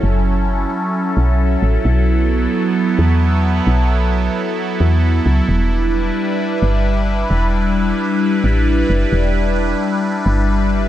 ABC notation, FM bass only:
X:1
M:4/4
L:1/8
Q:1/4=132
K:Edor
V:1 name="FM bass" clef=bass
F,,,3 z2 B,,,2 A,,, | B,,,3 z2 E,,3 | B,,,3 z2 E,,2 C,, | E,,,3 z2 G,,,3 |
E,,,3 z2 A,,,2 F,,, | E,,,3 z2 G,,,3 |]